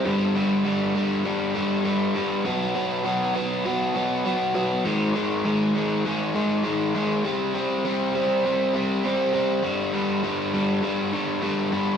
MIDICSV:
0, 0, Header, 1, 2, 480
1, 0, Start_track
1, 0, Tempo, 599401
1, 42, Time_signature, 4, 2, 24, 8
1, 9587, End_track
2, 0, Start_track
2, 0, Title_t, "Overdriven electric guitar"
2, 0, Program_c, 0, 29
2, 37, Note_on_c, 0, 43, 93
2, 43, Note_on_c, 0, 50, 92
2, 45, Note_on_c, 0, 55, 106
2, 272, Note_off_c, 0, 43, 0
2, 277, Note_off_c, 0, 50, 0
2, 280, Note_off_c, 0, 55, 0
2, 281, Note_on_c, 0, 43, 84
2, 287, Note_on_c, 0, 50, 83
2, 290, Note_on_c, 0, 55, 89
2, 509, Note_off_c, 0, 43, 0
2, 516, Note_off_c, 0, 50, 0
2, 517, Note_off_c, 0, 55, 0
2, 518, Note_on_c, 0, 43, 84
2, 525, Note_on_c, 0, 50, 96
2, 526, Note_on_c, 0, 55, 108
2, 747, Note_off_c, 0, 43, 0
2, 756, Note_off_c, 0, 50, 0
2, 757, Note_on_c, 0, 43, 78
2, 758, Note_off_c, 0, 55, 0
2, 766, Note_on_c, 0, 50, 87
2, 768, Note_on_c, 0, 55, 81
2, 993, Note_off_c, 0, 43, 0
2, 998, Note_off_c, 0, 50, 0
2, 1002, Note_on_c, 0, 43, 93
2, 1003, Note_off_c, 0, 55, 0
2, 1008, Note_on_c, 0, 50, 84
2, 1013, Note_on_c, 0, 55, 94
2, 1232, Note_off_c, 0, 43, 0
2, 1235, Note_off_c, 0, 50, 0
2, 1237, Note_off_c, 0, 55, 0
2, 1241, Note_on_c, 0, 43, 80
2, 1245, Note_on_c, 0, 50, 81
2, 1247, Note_on_c, 0, 55, 84
2, 1468, Note_off_c, 0, 43, 0
2, 1472, Note_off_c, 0, 50, 0
2, 1476, Note_off_c, 0, 55, 0
2, 1478, Note_on_c, 0, 43, 85
2, 1482, Note_on_c, 0, 50, 91
2, 1485, Note_on_c, 0, 55, 105
2, 1709, Note_off_c, 0, 43, 0
2, 1717, Note_off_c, 0, 50, 0
2, 1718, Note_on_c, 0, 43, 80
2, 1719, Note_off_c, 0, 55, 0
2, 1726, Note_on_c, 0, 50, 79
2, 1729, Note_on_c, 0, 55, 87
2, 1947, Note_off_c, 0, 43, 0
2, 1951, Note_off_c, 0, 50, 0
2, 1952, Note_off_c, 0, 55, 0
2, 1963, Note_on_c, 0, 47, 96
2, 1967, Note_on_c, 0, 54, 91
2, 1971, Note_on_c, 0, 59, 102
2, 2193, Note_off_c, 0, 47, 0
2, 2197, Note_off_c, 0, 54, 0
2, 2201, Note_off_c, 0, 59, 0
2, 2202, Note_on_c, 0, 47, 91
2, 2206, Note_on_c, 0, 54, 83
2, 2210, Note_on_c, 0, 59, 88
2, 2433, Note_off_c, 0, 47, 0
2, 2433, Note_off_c, 0, 54, 0
2, 2439, Note_off_c, 0, 59, 0
2, 2443, Note_on_c, 0, 47, 88
2, 2443, Note_on_c, 0, 54, 98
2, 2448, Note_on_c, 0, 59, 95
2, 2673, Note_off_c, 0, 47, 0
2, 2680, Note_off_c, 0, 54, 0
2, 2681, Note_off_c, 0, 59, 0
2, 2683, Note_on_c, 0, 47, 82
2, 2690, Note_on_c, 0, 54, 85
2, 2690, Note_on_c, 0, 59, 90
2, 2916, Note_off_c, 0, 47, 0
2, 2921, Note_off_c, 0, 54, 0
2, 2924, Note_off_c, 0, 59, 0
2, 2925, Note_on_c, 0, 47, 93
2, 2930, Note_on_c, 0, 54, 99
2, 2934, Note_on_c, 0, 59, 104
2, 3156, Note_off_c, 0, 47, 0
2, 3159, Note_off_c, 0, 54, 0
2, 3163, Note_off_c, 0, 59, 0
2, 3166, Note_on_c, 0, 47, 76
2, 3168, Note_on_c, 0, 54, 79
2, 3173, Note_on_c, 0, 59, 93
2, 3395, Note_off_c, 0, 47, 0
2, 3401, Note_off_c, 0, 54, 0
2, 3403, Note_off_c, 0, 59, 0
2, 3405, Note_on_c, 0, 47, 89
2, 3410, Note_on_c, 0, 54, 90
2, 3413, Note_on_c, 0, 59, 106
2, 3632, Note_off_c, 0, 47, 0
2, 3634, Note_off_c, 0, 54, 0
2, 3636, Note_off_c, 0, 59, 0
2, 3641, Note_on_c, 0, 47, 89
2, 3643, Note_on_c, 0, 54, 90
2, 3646, Note_on_c, 0, 59, 95
2, 3869, Note_off_c, 0, 47, 0
2, 3870, Note_off_c, 0, 54, 0
2, 3871, Note_off_c, 0, 59, 0
2, 3884, Note_on_c, 0, 44, 92
2, 3889, Note_on_c, 0, 51, 112
2, 3891, Note_on_c, 0, 56, 106
2, 4113, Note_off_c, 0, 44, 0
2, 4118, Note_off_c, 0, 51, 0
2, 4122, Note_off_c, 0, 56, 0
2, 4123, Note_on_c, 0, 44, 78
2, 4127, Note_on_c, 0, 51, 87
2, 4132, Note_on_c, 0, 56, 78
2, 4353, Note_off_c, 0, 44, 0
2, 4357, Note_off_c, 0, 51, 0
2, 4361, Note_off_c, 0, 56, 0
2, 4363, Note_on_c, 0, 44, 92
2, 4366, Note_on_c, 0, 51, 96
2, 4371, Note_on_c, 0, 56, 98
2, 4593, Note_off_c, 0, 44, 0
2, 4597, Note_off_c, 0, 51, 0
2, 4601, Note_off_c, 0, 56, 0
2, 4603, Note_on_c, 0, 44, 83
2, 4606, Note_on_c, 0, 51, 92
2, 4610, Note_on_c, 0, 56, 98
2, 4833, Note_off_c, 0, 44, 0
2, 4839, Note_off_c, 0, 51, 0
2, 4842, Note_off_c, 0, 56, 0
2, 4843, Note_on_c, 0, 44, 101
2, 4849, Note_on_c, 0, 51, 95
2, 4851, Note_on_c, 0, 56, 106
2, 5072, Note_off_c, 0, 44, 0
2, 5077, Note_off_c, 0, 51, 0
2, 5080, Note_off_c, 0, 56, 0
2, 5082, Note_on_c, 0, 44, 80
2, 5086, Note_on_c, 0, 51, 85
2, 5089, Note_on_c, 0, 56, 85
2, 5310, Note_off_c, 0, 44, 0
2, 5313, Note_off_c, 0, 51, 0
2, 5315, Note_off_c, 0, 56, 0
2, 5319, Note_on_c, 0, 44, 95
2, 5323, Note_on_c, 0, 51, 102
2, 5325, Note_on_c, 0, 56, 99
2, 5554, Note_off_c, 0, 44, 0
2, 5555, Note_off_c, 0, 51, 0
2, 5562, Note_off_c, 0, 56, 0
2, 5564, Note_on_c, 0, 44, 79
2, 5565, Note_on_c, 0, 51, 91
2, 5572, Note_on_c, 0, 56, 91
2, 5790, Note_off_c, 0, 44, 0
2, 5790, Note_off_c, 0, 51, 0
2, 5794, Note_off_c, 0, 56, 0
2, 5801, Note_on_c, 0, 48, 101
2, 5806, Note_on_c, 0, 55, 107
2, 5809, Note_on_c, 0, 60, 105
2, 6032, Note_off_c, 0, 48, 0
2, 6040, Note_off_c, 0, 60, 0
2, 6041, Note_on_c, 0, 48, 85
2, 6046, Note_off_c, 0, 55, 0
2, 6049, Note_on_c, 0, 55, 83
2, 6050, Note_on_c, 0, 60, 92
2, 6276, Note_off_c, 0, 48, 0
2, 6281, Note_off_c, 0, 60, 0
2, 6284, Note_off_c, 0, 55, 0
2, 6285, Note_on_c, 0, 48, 88
2, 6287, Note_on_c, 0, 55, 92
2, 6291, Note_on_c, 0, 60, 91
2, 6513, Note_off_c, 0, 48, 0
2, 6520, Note_off_c, 0, 60, 0
2, 6522, Note_on_c, 0, 48, 84
2, 6523, Note_off_c, 0, 55, 0
2, 6526, Note_on_c, 0, 55, 78
2, 6530, Note_on_c, 0, 60, 86
2, 6757, Note_off_c, 0, 48, 0
2, 6761, Note_off_c, 0, 55, 0
2, 6764, Note_off_c, 0, 60, 0
2, 6767, Note_on_c, 0, 48, 88
2, 6771, Note_on_c, 0, 55, 90
2, 6773, Note_on_c, 0, 60, 93
2, 6989, Note_off_c, 0, 48, 0
2, 6996, Note_off_c, 0, 55, 0
2, 6998, Note_off_c, 0, 60, 0
2, 6998, Note_on_c, 0, 48, 81
2, 7006, Note_on_c, 0, 55, 90
2, 7008, Note_on_c, 0, 60, 88
2, 7233, Note_off_c, 0, 48, 0
2, 7238, Note_off_c, 0, 55, 0
2, 7242, Note_off_c, 0, 60, 0
2, 7242, Note_on_c, 0, 48, 96
2, 7247, Note_on_c, 0, 55, 98
2, 7252, Note_on_c, 0, 60, 109
2, 7466, Note_off_c, 0, 48, 0
2, 7472, Note_off_c, 0, 55, 0
2, 7475, Note_off_c, 0, 60, 0
2, 7475, Note_on_c, 0, 48, 76
2, 7481, Note_on_c, 0, 55, 76
2, 7485, Note_on_c, 0, 60, 89
2, 7704, Note_off_c, 0, 48, 0
2, 7707, Note_off_c, 0, 55, 0
2, 7709, Note_off_c, 0, 60, 0
2, 7713, Note_on_c, 0, 43, 102
2, 7717, Note_on_c, 0, 50, 101
2, 7718, Note_on_c, 0, 55, 113
2, 7943, Note_off_c, 0, 43, 0
2, 7949, Note_off_c, 0, 50, 0
2, 7952, Note_off_c, 0, 55, 0
2, 7952, Note_on_c, 0, 43, 83
2, 7959, Note_on_c, 0, 50, 85
2, 7961, Note_on_c, 0, 55, 81
2, 8183, Note_off_c, 0, 43, 0
2, 8188, Note_off_c, 0, 50, 0
2, 8189, Note_off_c, 0, 55, 0
2, 8192, Note_on_c, 0, 43, 85
2, 8197, Note_on_c, 0, 50, 92
2, 8198, Note_on_c, 0, 55, 107
2, 8422, Note_off_c, 0, 43, 0
2, 8425, Note_off_c, 0, 50, 0
2, 8431, Note_off_c, 0, 55, 0
2, 8432, Note_on_c, 0, 43, 77
2, 8435, Note_on_c, 0, 50, 86
2, 8441, Note_on_c, 0, 55, 85
2, 8656, Note_off_c, 0, 43, 0
2, 8661, Note_off_c, 0, 50, 0
2, 8665, Note_off_c, 0, 55, 0
2, 8665, Note_on_c, 0, 43, 93
2, 8670, Note_on_c, 0, 50, 93
2, 8675, Note_on_c, 0, 55, 110
2, 8901, Note_off_c, 0, 43, 0
2, 8903, Note_off_c, 0, 50, 0
2, 8908, Note_off_c, 0, 55, 0
2, 8910, Note_on_c, 0, 43, 80
2, 8913, Note_on_c, 0, 50, 89
2, 8917, Note_on_c, 0, 55, 91
2, 9138, Note_off_c, 0, 43, 0
2, 9144, Note_off_c, 0, 50, 0
2, 9148, Note_on_c, 0, 43, 89
2, 9149, Note_off_c, 0, 55, 0
2, 9154, Note_on_c, 0, 50, 98
2, 9158, Note_on_c, 0, 55, 93
2, 9376, Note_off_c, 0, 43, 0
2, 9379, Note_off_c, 0, 50, 0
2, 9386, Note_off_c, 0, 55, 0
2, 9386, Note_on_c, 0, 43, 84
2, 9389, Note_on_c, 0, 50, 83
2, 9395, Note_on_c, 0, 55, 93
2, 9587, Note_off_c, 0, 43, 0
2, 9587, Note_off_c, 0, 50, 0
2, 9587, Note_off_c, 0, 55, 0
2, 9587, End_track
0, 0, End_of_file